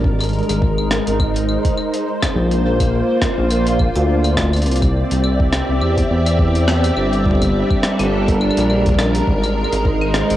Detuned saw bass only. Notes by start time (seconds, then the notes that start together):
0.04 G#1
0.49 G#1
1.07 G#1
2.35 A#1
3.38 A#1
3.96 D2
4.66 C2
5.11 C2
5.69 C2
5.81 E2
6.10 E2
6.97 G1
7.99 G1
8.57 A#1
9.28 G#1
9.73 G#1
10.30 G#1